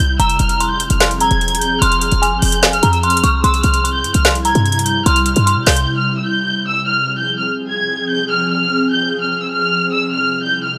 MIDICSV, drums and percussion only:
0, 0, Header, 1, 2, 480
1, 0, Start_track
1, 0, Key_signature, -4, "minor"
1, 0, Tempo, 405405
1, 231, Time_signature, 4, 2, 24, 8
1, 12764, End_track
2, 0, Start_track
2, 0, Title_t, "Drums"
2, 232, Note_on_c, 9, 42, 87
2, 350, Note_off_c, 9, 42, 0
2, 350, Note_on_c, 9, 42, 59
2, 465, Note_off_c, 9, 42, 0
2, 465, Note_on_c, 9, 42, 73
2, 583, Note_off_c, 9, 42, 0
2, 584, Note_on_c, 9, 42, 62
2, 702, Note_off_c, 9, 42, 0
2, 716, Note_on_c, 9, 42, 80
2, 834, Note_off_c, 9, 42, 0
2, 946, Note_on_c, 9, 42, 64
2, 1065, Note_off_c, 9, 42, 0
2, 1066, Note_on_c, 9, 42, 83
2, 1184, Note_off_c, 9, 42, 0
2, 1189, Note_on_c, 9, 42, 89
2, 1191, Note_on_c, 9, 38, 119
2, 1307, Note_off_c, 9, 42, 0
2, 1309, Note_off_c, 9, 38, 0
2, 1315, Note_on_c, 9, 42, 55
2, 1427, Note_off_c, 9, 42, 0
2, 1427, Note_on_c, 9, 42, 76
2, 1545, Note_off_c, 9, 42, 0
2, 1548, Note_on_c, 9, 42, 46
2, 1666, Note_off_c, 9, 42, 0
2, 1671, Note_on_c, 9, 42, 45
2, 1752, Note_off_c, 9, 42, 0
2, 1752, Note_on_c, 9, 42, 62
2, 1832, Note_off_c, 9, 42, 0
2, 1832, Note_on_c, 9, 42, 80
2, 1912, Note_off_c, 9, 42, 0
2, 1912, Note_on_c, 9, 42, 77
2, 2030, Note_off_c, 9, 42, 0
2, 2153, Note_on_c, 9, 42, 92
2, 2270, Note_off_c, 9, 42, 0
2, 2270, Note_on_c, 9, 42, 59
2, 2385, Note_off_c, 9, 42, 0
2, 2385, Note_on_c, 9, 42, 75
2, 2504, Note_off_c, 9, 42, 0
2, 2505, Note_on_c, 9, 42, 62
2, 2623, Note_off_c, 9, 42, 0
2, 2637, Note_on_c, 9, 42, 81
2, 2755, Note_off_c, 9, 42, 0
2, 2868, Note_on_c, 9, 46, 86
2, 2986, Note_off_c, 9, 46, 0
2, 2987, Note_on_c, 9, 42, 82
2, 3106, Note_off_c, 9, 42, 0
2, 3110, Note_on_c, 9, 42, 91
2, 3112, Note_on_c, 9, 38, 120
2, 3228, Note_off_c, 9, 42, 0
2, 3230, Note_off_c, 9, 38, 0
2, 3235, Note_on_c, 9, 42, 56
2, 3348, Note_off_c, 9, 42, 0
2, 3348, Note_on_c, 9, 42, 76
2, 3467, Note_off_c, 9, 42, 0
2, 3469, Note_on_c, 9, 42, 49
2, 3587, Note_off_c, 9, 42, 0
2, 3592, Note_on_c, 9, 42, 47
2, 3672, Note_off_c, 9, 42, 0
2, 3672, Note_on_c, 9, 42, 63
2, 3752, Note_off_c, 9, 42, 0
2, 3752, Note_on_c, 9, 42, 78
2, 3832, Note_off_c, 9, 42, 0
2, 3832, Note_on_c, 9, 42, 74
2, 3950, Note_off_c, 9, 42, 0
2, 4073, Note_on_c, 9, 42, 87
2, 4189, Note_off_c, 9, 42, 0
2, 4189, Note_on_c, 9, 42, 61
2, 4304, Note_off_c, 9, 42, 0
2, 4304, Note_on_c, 9, 42, 72
2, 4422, Note_off_c, 9, 42, 0
2, 4424, Note_on_c, 9, 42, 61
2, 4543, Note_off_c, 9, 42, 0
2, 4557, Note_on_c, 9, 42, 81
2, 4675, Note_off_c, 9, 42, 0
2, 4787, Note_on_c, 9, 42, 63
2, 4905, Note_off_c, 9, 42, 0
2, 4905, Note_on_c, 9, 42, 80
2, 5023, Note_off_c, 9, 42, 0
2, 5029, Note_on_c, 9, 42, 91
2, 5031, Note_on_c, 9, 38, 118
2, 5147, Note_off_c, 9, 42, 0
2, 5149, Note_off_c, 9, 38, 0
2, 5155, Note_on_c, 9, 42, 57
2, 5268, Note_off_c, 9, 42, 0
2, 5268, Note_on_c, 9, 42, 75
2, 5386, Note_off_c, 9, 42, 0
2, 5389, Note_on_c, 9, 42, 47
2, 5507, Note_off_c, 9, 42, 0
2, 5513, Note_on_c, 9, 42, 46
2, 5592, Note_off_c, 9, 42, 0
2, 5592, Note_on_c, 9, 42, 61
2, 5671, Note_off_c, 9, 42, 0
2, 5671, Note_on_c, 9, 42, 77
2, 5752, Note_off_c, 9, 42, 0
2, 5752, Note_on_c, 9, 42, 75
2, 5870, Note_off_c, 9, 42, 0
2, 5992, Note_on_c, 9, 42, 92
2, 6109, Note_off_c, 9, 42, 0
2, 6109, Note_on_c, 9, 42, 59
2, 6225, Note_off_c, 9, 42, 0
2, 6225, Note_on_c, 9, 42, 73
2, 6343, Note_off_c, 9, 42, 0
2, 6345, Note_on_c, 9, 42, 64
2, 6463, Note_off_c, 9, 42, 0
2, 6477, Note_on_c, 9, 42, 81
2, 6596, Note_off_c, 9, 42, 0
2, 6707, Note_on_c, 9, 46, 86
2, 6711, Note_on_c, 9, 38, 102
2, 6826, Note_off_c, 9, 46, 0
2, 6826, Note_on_c, 9, 42, 81
2, 6830, Note_off_c, 9, 38, 0
2, 6944, Note_off_c, 9, 42, 0
2, 12764, End_track
0, 0, End_of_file